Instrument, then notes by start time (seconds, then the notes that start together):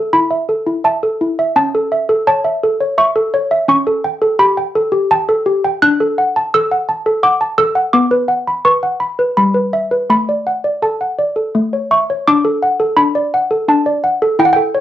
handbells
Already playing: A3 A4 C#6
0.13 E4 B5
0.31 E5
0.49 A4
0.66 E4
0.84 E5 A5
1.03 A4
1.21 E4
1.39 E5
1.56 C#4 A5
1.75 A4
1.92 E5
2.09 A4
2.27 C#5 A5
2.44 E5
2.63 A4
2.80 C#5
2.98 E5 C#6
3.16 A4
3.34 C#5
3.51 E5
3.69 C#4 C#6
3.87 A4
4.05 G5
4.22 A4
4.39 G4 B5
4.57 G5
4.75 A4
4.92 G4
5.11 G5 A5
5.29 A4
5.46 G4
5.65 G5
5.82 D4 F#6
6.00 A4
6.18 F#5
6.36 A5
6.54 A4 E6
6.71 F#5
6.89 A5
7.06 A4
7.23 F#5 D6
7.41 A5
7.58 A4 E6
7.75 F#5
7.93 B3 D6
8.11 B4
8.28 F#5
8.48 B5
8.65 B4 C#6
8.83 F#5
9.00 B5
9.19 B4
9.37 G3 B5
9.54 B4
9.73 E5
9.91 B4
10.10 A3 B5
10.29 D5
10.47 F#5
10.64 D5
10.82 A4 A5
11.01 F#5
11.19 D5
11.36 A4
11.55 A3
11.73 C#5
11.91 E5 C#6
12.10 C#5
12.28 D4 D6
12.45 A4
12.63 F#5
12.80 A4
12.97 D4 B5
13.15 D5
13.34 F#5
13.51 A4
13.68 D4 A5
13.86 D5
14.04 F#5
14.22 A4
14.39 E4 G5
14.45 F#5
14.53 A4 G5
14.75 C#5